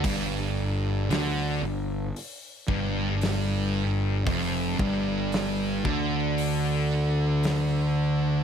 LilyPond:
<<
  \new Staff \with { instrumentName = "Distorted electric guitar" } { \clef bass \time 4/4 \key g \mixolydian \tempo 4 = 57 g,4 d8 g,8 r8 g,4. | f,8 g,4 d2~ d8 | }
  \new Staff \with { instrumentName = "Distorted electric guitar" } { \clef bass \time 4/4 \key g \mixolydian g,4 d8 g,8 r8 g,4. | f,8 g,4 d2~ d8 | }
  \new Staff \with { instrumentName = "Fingered electric bass" } { \clef bass \time 4/4 \key g \mixolydian g,,4 d,8 g,,8 r8 g,,4. | f,,8 g,,4 d,2~ d,8 | }
  \new DrumStaff \with { instrumentName = "Drums" } \drummode { \time 4/4 <cymc hho bd>4 <hho sn>4 hho8 bd8 <hho sn>4 | <hho bd>8 bd8 <hho sn>8 bd8 hho4 <hho sn>4 | }
>>